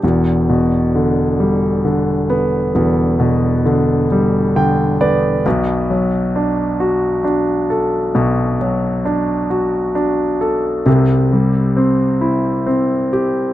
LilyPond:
\new Staff \with { instrumentName = "Grand piano" } { \clef bass \time 6/8 \key e \minor \tempo 4. = 44 <e,, e,>8 b,8 d8 g8 d8 b8 | <e,, e,>8 b,8 d8 g8 <d g''>8 <b d''>8 | <b,, b,>8 fis8 d'8 fis'8 d'8 a'8 | <b,, b,>8 fis8 d'8 fis'8 d'8 a'8 |
<c, c>8 g8 c'8 e'8 c'8 g'8 | }